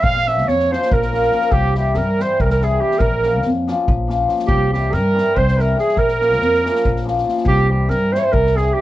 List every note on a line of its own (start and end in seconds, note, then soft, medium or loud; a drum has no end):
0.02 0.47 A#1 medium
0.02 0.29 F5 loud
0.02 0.30 F5 loud
0.02 kick loud
0.16 snare soft
0.25 0.69 F3 medium
0.25 0.39 A#3 medium
0.25 0.39 C#4 medium
0.25 0.39 F4 medium
0.25 0.50 E5 medium
0.25 0.48 E5 medium
0.25 snare soft
0.37 snare soft
0.47 0.74 F2 medium
0.47 0.71 C#5 medium
0.47 0.71 C#5 loud
0.47 snare soft
0.59 snare soft
0.70 1.10 F3 medium
0.70 0.83 A#3 medium
0.70 0.83 C#4 medium
0.70 0.83 F4 medium
0.70 0.95 C5 medium
0.70 0.93 C5 medium
0.70 snare soft
0.82 snare soft
0.92 1.28 A#1 medium
0.92 1.53 A#4 medium
0.92 1.55 A#4 medium
0.92 kick medium
1.03 snare soft
1.11 1.31 F3 medium
1.11 1.24 A#3 medium
1.11 1.25 C#4 medium
1.11 1.25 F4 medium
1.11 snare soft
1.23 snare soft
1.32 1.56 F3 medium
1.32 1.44 A#3 medium
1.32 1.45 C#4 soft
1.32 1.45 F4 medium
1.32 snare soft
1.41 snare soft
1.52 1.97 C2 medium
1.52 1.76 G4 loud
1.52 1.77 G4 loud
1.52 kick medium
1.73 2.16 E3 medium
1.73 2.16 G3 medium
1.73 1.87 C4 medium
1.73 1.88 E4 medium
1.73 1.97 G4 medium
1.73 snare soft
1.78 1.99 G4 medium
1.94 2.22 G2 medium
1.94 2.23 A#4 medium
1.94 snare soft
2.18 2.58 E3 medium
2.18 2.58 G3 medium
2.18 2.32 C4 medium
2.18 2.32 E4 medium
2.18 snare soft
2.22 2.43 C5 medium
2.22 2.42 C5 medium
2.40 2.76 C2 medium
2.40 2.44 A#4 medium
2.40 2.45 A#4 medium
2.40 kick medium
2.45 2.50 A#4 medium
2.45 2.51 A#4 medium
2.50 2.65 A#4 medium
2.50 snare soft
2.59 2.78 E3 medium
2.59 2.79 G3 medium
2.59 2.73 C4 medium
2.59 2.73 E4 medium
2.59 snare soft
2.63 2.83 G#4 medium
2.79 3.05 E3 medium
2.79 3.05 G3 soft
2.79 2.93 C4 medium
2.79 2.93 E4 medium
2.79 3.03 G4 medium
2.79 3.00 G4 medium
2.91 snare soft
2.99 3.44 A#1 medium
2.99 3.49 A#4 loud
2.99 3.51 A#4 medium
2.99 kick medium
3.22 3.66 F3 medium
3.22 3.36 A#3 medium
3.22 3.36 C#4 medium
3.22 3.36 F4 medium
3.22 snare soft
3.42 3.71 F2 medium
3.42 snare soft
3.67 4.06 F3 medium
3.67 3.80 A#3 medium
3.67 3.81 C#4 medium
3.67 3.81 F4 medium
3.67 snare soft
3.88 4.24 A#1 loud
3.88 kick medium
4.07 4.26 F3 medium
4.07 4.21 A#3 medium
4.07 4.21 C#4 medium
4.07 4.22 F4 medium
4.07 snare soft
4.27 4.53 F3 medium
4.27 4.41 A#3 medium
4.27 4.41 C#4 medium
4.27 4.41 F4 medium
4.27 snare soft
4.39 snare soft
4.47 4.94 C2 medium
4.47 4.70 G4 loud
4.47 4.71 G4 medium
4.47 kick loud
4.72 5.13 E3 medium
4.72 5.13 G3 medium
4.72 4.85 C4 medium
4.72 4.85 E4 medium
4.72 4.95 G4 medium
4.72 4.93 G4 medium
4.72 snare soft
4.91 5.19 G2 loud
4.91 5.37 A#4 medium
4.91 5.39 A#4 loud
4.91 snare soft
5.14 5.55 E3 medium
5.14 5.56 G3 medium
5.14 5.28 C4 medium
5.14 5.29 E4 medium
5.18 snare soft
5.35 5.73 C2 loud
5.35 5.60 C5 loud
5.35 5.62 C5 loud
5.35 kick medium
5.48 snare soft
5.56 5.74 E3 medium
5.56 5.75 G3 medium
5.56 5.70 C4 medium
5.56 5.71 E4 medium
5.56 5.77 A#4 medium
5.56 snare soft
5.61 5.79 A#4 medium
5.75 6.02 E3 medium
5.75 6.02 G3 soft
5.75 5.89 C4 medium
5.75 5.90 E4 medium
5.75 5.99 G#4 medium
5.75 snare soft
5.80 6.00 G#4 medium
5.89 snare soft
5.96 6.41 A#1 medium
5.96 7.27 A#4 medium
5.96 7.27 A#4 loud
5.96 kick medium
6.09 snare soft
6.19 6.62 F3 medium
6.19 6.33 A#3 medium
6.19 6.33 C#4 medium
6.19 6.33 F4 medium
6.19 snare soft
6.32 snare soft
6.41 6.67 F2 medium
6.41 snare soft
6.54 snare soft
6.63 7.03 F3 medium
6.63 6.77 A#3 medium
6.63 6.77 C#4 medium
6.63 6.77 F4 medium
6.63 snare soft
6.76 snare soft
6.85 7.22 A#1 medium
6.85 kick medium
6.96 snare soft
7.04 7.23 F3 medium
7.04 7.18 A#3 medium
7.04 7.18 C#4 medium
7.04 7.19 F4 medium
7.04 snare soft
7.18 snare soft
7.24 7.50 F3 medium
7.24 7.38 A#3 medium
7.24 7.38 C#4 medium
7.24 7.38 F4 medium
7.29 snare soft
7.38 snare soft
7.45 7.90 C2 loud
7.45 7.68 G4 medium
7.45 7.69 G4 loud
7.45 kick medium
7.69 8.09 E3 medium
7.69 8.11 G3 medium
7.69 7.82 C4 medium
7.69 7.83 E4 medium
7.69 7.91 G4 medium
7.89 8.15 G2 medium
7.89 8.14 A#4 loud
7.89 8.15 A#4 medium
7.89 snare soft
8.10 8.53 E3 medium
8.10 8.54 G3 medium
8.10 8.25 C4 medium
8.10 8.26 E4 medium
8.10 8.21 C5 medium
8.10 8.19 C5 medium
8.15 8.25 C#5 medium
8.15 snare soft
8.19 8.26 C#5 medium
8.24 8.35 C5 medium
8.24 8.34 C5 medium
8.32 8.69 C2 medium
8.32 8.58 A#4 medium
8.32 8.57 A#4 medium
8.32 kick medium
8.47 snare soft
8.54 8.73 E3 medium
8.54 8.74 G3 medium
8.54 8.68 C4 medium
8.54 8.68 E4 medium
8.54 8.75 G#4 medium
8.54 8.76 G#4 medium
8.54 snare soft
8.74 8.81 E3 medium
8.74 8.81 G3 soft
8.74 8.81 C4 soft
8.74 8.81 E4 medium
8.74 8.81 G4 medium
8.74 8.81 G4 loud